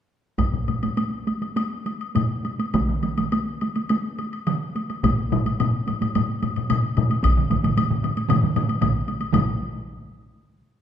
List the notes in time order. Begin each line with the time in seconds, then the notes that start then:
0.38 taiko, taiko low-mid, taiko high, high woodblock
0.53 taiko low-mid
0.68 taiko low-mid, taiko high, high woodblock
0.83 taiko low-mid, taiko high, high woodblock
0.97 taiko high, high woodblock
1.27 taiko high, high woodblock
1.42 taiko high, high woodblock
1.56 taiko high, high woodblock
1.86 taiko high, high woodblock
2.01 high woodblock
2.15 taiko low-mid, taiko high, high woodblock
2.45 taiko high, high woodblock
2.59 taiko high, high woodblock
2.74 taiko, taiko mid, taiko high, high woodblock
2.89 taiko mid
3.03 taiko mid, taiko high, high woodblock
3.18 taiko mid, taiko high, high woodblock
3.32 taiko high, high woodblock
3.61 taiko high, high woodblock
3.76 taiko high, high woodblock
3.89 taiko high, high woodblock
4.19 taiko high, high woodblock
4.33 high woodblock
4.47 taiko mid, taiko high, high woodblock
4.75 taiko high, high woodblock
4.90 taiko high, high woodblock
5.03 taiko, taiko low-mid, taiko high, high woodblock
5.32 taiko low-mid, taiko high, high woodblock
5.46 taiko high, high woodblock
5.60 taiko low-mid, taiko high, high woodblock
5.87 taiko low-mid, taiko high, high woodblock
6.02 taiko low-mid, taiko high, high woodblock
6.15 taiko low-mid, taiko high, high woodblock
6.42 taiko low-mid, taiko high, high woodblock
6.56 taiko low-mid, high woodblock
6.70 taiko low-mid, taiko high, high woodblock
6.97 taiko low-mid, taiko high, high woodblock
7.10 taiko high, high woodblock
7.23 taiko, taiko low-mid, taiko mid, taiko high, high woodblock
7.37 taiko low-mid, taiko mid
7.50 taiko, taiko low-mid, taiko mid, taiko high, high woodblock
7.64 taiko low-mid, taiko mid, taiko high, high woodblock
7.77 taiko low-mid, taiko mid, taiko high, high woodblock
7.90 taiko low-mid, taiko mid
8.03 taiko low-mid, taiko mid, taiko high, high woodblock
8.17 taiko high, high woodblock
8.29 taiko low-mid, taiko mid, taiko high, high woodblock
8.43 taiko low-mid, taiko mid
8.56 taiko low-mid, taiko mid, taiko high, high woodblock
8.69 taiko high, high woodblock
8.81 taiko, taiko low-mid, taiko mid, taiko high, high woodblock
9.08 taiko high, high woodblock
9.21 taiko high, high woodblock
9.33 taiko, taiko low-mid, taiko mid, taiko high, high woodblock